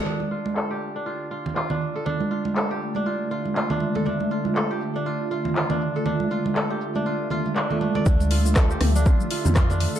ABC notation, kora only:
X:1
M:4/4
L:1/16
Q:"Swing 16ths" 1/4=120
K:Dm
V:1 name="Kora"
D z F z A G z D F z F z F D z A | D z F z A G z D F z F z F D z A | D z F z A G z D F z F z F D z A | D z F z A G z D F z F z D A, D d |
D z F z A G z D F z F z F D z A |]